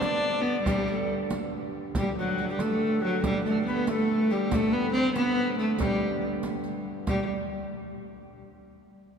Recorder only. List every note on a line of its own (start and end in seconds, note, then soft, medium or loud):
0.03 0.65 D5 loud
0.65 0.91 G4 medium
0.91 1.12 A4 medium
1.96 2.16 G4 medium
2.18 2.47 F#4 medium
2.48 2.61 G4 medium
2.60 3.03 A4 medium
3.01 3.23 F#4 medium
3.22 3.44 G4 medium
3.45 3.65 A4 medium
3.66 3.86 B4 medium
3.87 4.27 A4 medium
4.29 4.50 G4 medium
4.52 4.73 A4 medium
4.72 4.93 B4 medium
4.94 5.14 C5 loud
4.94 4.98 D5 medium
5.17 5.56 B4 loud
5.59 5.65 A4 medium
5.79 6.24 G4 medium
5.79 5.83 A4 medium
7.08 7.28 G4 medium